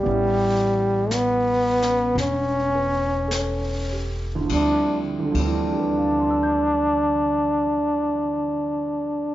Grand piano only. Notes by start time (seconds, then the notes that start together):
0.03 G3 B3 C#4
0.08 E4
1.82 C#4
2.75 B4
3.28 A4
3.92 G4
4.35 D2
4.41 D3
4.46 F3
4.51 G3
4.56 C4 E4
5.20 D2
5.25 D3
5.31 F3
5.36 G3
5.40 C4
5.45 E3
5.72 G4
5.80 B4
5.89 D5
5.97 F5
6.07 A5
6.19 C6
6.30 E6
6.43 G6